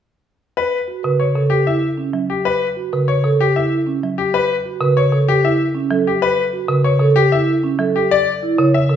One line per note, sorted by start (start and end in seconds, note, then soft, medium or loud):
0.57 0.77 B4 medium
0.88 1.09 F#4 medium
1.03 1.25 C#3 medium
1.03 1.24 B4 medium
1.20 1.40 C#5 soft
1.35 1.56 C#3 medium
1.35 1.56 A4 medium
1.50 1.71 G4 medium
1.66 1.87 E4 soft
1.66 1.87 E5 medium
1.97 2.19 C#4 medium
2.13 2.34 F#3 medium
2.30 2.50 G4 medium
2.45 2.66 B4 medium
2.77 2.97 F#4 medium
2.93 3.13 C#3 medium
2.93 3.13 B4 medium
3.08 3.29 C#5 medium
3.24 3.44 C#3 medium
3.24 3.44 A4 medium
3.41 3.60 G4 medium
3.56 3.76 E4 medium
3.56 3.76 E5 medium
3.86 4.07 C#4 medium
4.03 4.23 F#3 medium
4.18 4.39 G4 medium
4.34 4.54 B4 medium
4.65 4.86 F#4 medium
4.81 5.01 C#3 medium
4.81 5.02 B4 medium
4.97 5.17 C#5 medium
5.12 5.33 C#3 medium
5.12 5.33 A4 medium
5.28 5.49 G4 medium
5.43 5.64 E4 medium
5.43 5.65 E5 medium
5.75 5.96 C#4 medium
5.90 6.11 F#3 medium
5.90 6.11 A4 medium
6.07 6.27 G4 medium
6.22 6.43 B4 medium
6.53 6.74 F#4 medium
6.68 6.90 C#3 medium
6.68 6.90 B4 medium
6.84 7.05 C#5 medium
7.00 7.21 C#3 medium
7.00 7.21 A4 medium
7.16 7.37 G4 medium
7.32 7.53 E4 medium
7.32 7.53 E5 medium
7.64 7.84 C#4 medium
7.79 8.00 F#3 medium
7.79 8.00 A4 medium
7.96 8.16 G4 medium
8.11 8.32 D5 medium
8.43 8.63 E4 medium
8.58 8.79 C#3 medium
8.58 8.79 C#5 medium
8.74 8.94 E5 medium
8.89 8.96 C#3 medium
8.89 8.96 A4 medium